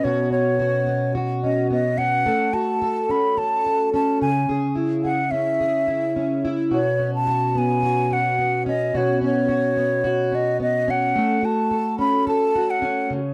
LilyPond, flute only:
\new Staff \with { instrumentName = "Flute" } { \time 4/4 \key b \mixolydian \tempo 4 = 108 cis''8 cis''2 dis''8 dis''8 fis''8~ | fis''8 a''4 b''8 a''4 a''8 gis''8~ | gis''8 r8 fis''8 e''2 r8 | cis''8. a''8. gis''4 fis''4 dis''8 |
cis''8 cis''2 dis''8 dis''8 fis''8~ | fis''8 a''4 b''8 a''8. fis''8. r8 | }